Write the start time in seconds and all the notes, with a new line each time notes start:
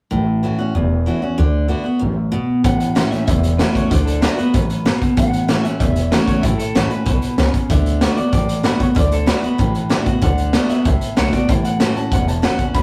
0.11 A1 A2
0.43 E3 A3 C#4 F#4
0.59 C#4 F#4, muted upright bass stroke
0.74 E1 E2
1.06 E3 A3 C#4 F#4
1.22 C#4 F#4, muted upright bass stroke
1.38 D2 D3
1.68 D3 A3 B3 F#4
1.84 B3 F#4, muted upright bass stroke
1.99 A1 F#2
2.32 B2
2.49 muted upright bass stroke
2.64 A1 A2 F#5, kick, closed hi-hat
2.80 closed hi-hat
2.95 E3 A3 C#4 F#4, snare, closed hi-hat
3.11 C#4 F#4 E5, muted upright bass stroke, snare, closed hi-hat
3.26 E1 E2 E5, kick, closed hi-hat
3.43 closed hi-hat
3.58 E3 A3 C#4 F#4 B4, snare, closed hi-hat
3.73 C#5, muted upright bass stroke, kick, closed hi-hat
3.90 D2 D3 D5, kick, closed hi-hat
4.05 A4, closed hi-hat
4.21 D3 A3 B3 F#4 B4, snare, closed hi-hat
4.37 B3 F#4 B4, muted upright bass stroke, closed hi-hat
4.54 A1 F#2, kick, closed hi-hat
4.70 closed hi-hat
4.85 B2, snare, closed hi-hat
5.02 kick, closed hi-hat
5.17 A1 A2 F#5, kick, closed hi-hat
5.33 closed hi-hat
5.48 E3 A3 C#4 F#4, snare, closed hi-hat
5.63 C#4 F#4 E5, muted upright bass stroke, snare, closed hi-hat
5.80 E1 E2 E5, kick, closed hi-hat
5.96 closed hi-hat
6.11 E3 A3 C#4 F#4 B4, snare, closed hi-hat
6.26 C#5, muted upright bass stroke, kick, closed hi-hat
6.42 A1 A2 E5, kick, closed hi-hat
6.58 A4, closed hi-hat
6.75 A1 E3 A3 C#4 F#4 B4, snare, closed hi-hat
6.91 C#4 F#4 B4, muted upright bass stroke, closed hi-hat
7.06 B1 B2, kick, closed hi-hat
7.22 closed hi-hat
7.38 C#2 C#3, snare, closed hi-hat
7.54 muted upright bass stroke, kick, closed hi-hat
7.70 D2 D3 E5, kick, closed hi-hat
7.86 closed hi-hat
8.01 D3 A3 B3 F#4, snare, closed hi-hat
8.17 B3 F#4 D5, muted upright bass stroke, closed hi-hat
8.33 A1 A2 D5, kick, closed hi-hat
8.49 closed hi-hat
8.63 D3 A3 B3 F#4 B4, snare, closed hi-hat
8.80 B3 F#4 C#5, kick, closed hi-hat
8.95 D2 D3 D5, kick, closed hi-hat
9.12 A4, closed hi-hat
9.26 D3 A3 B3 F#4 B4, snare, closed hi-hat
9.42 B3 F#4 B4, muted upright bass stroke, closed hi-hat
9.58 A1 A2, kick, closed hi-hat
9.75 closed hi-hat
9.89 D3 A3 B3 F#4, snare, closed hi-hat
10.06 B3 F#4, muted upright bass stroke, kick, closed hi-hat
10.21 D2 D3 F#5, kick, closed hi-hat
10.38 closed hi-hat
10.53 D3 A3 B3 F#4, snare, closed hi-hat
10.69 B3 F#4 E5, muted upright bass stroke, snare, closed hi-hat
10.85 C#2 A2 E5, kick, closed hi-hat
11.01 muted upright bass stroke, closed hi-hat
11.16 B1 D3 A3 B3 F#4 C#5, snare, closed hi-hat
11.33 B3 F#4 D5, kick, closed hi-hat
11.49 A1 A2 E5, kick, closed hi-hat
11.65 F#5, closed hi-hat
11.80 E3 A3 C#4 F#4 A5, snare, closed hi-hat
11.96 C#4 F#4 A5, muted upright bass stroke, closed hi-hat
12.12 E1 E2 F#5, kick, closed hi-hat
12.28 A5, closed hi-hat
12.42 E3 A3 C#4 F#4 F#5, snare, closed hi-hat
12.59 C#4 F#4, muted upright bass stroke, kick, closed hi-hat
12.74 E1 E2 B5, kick, closed hi-hat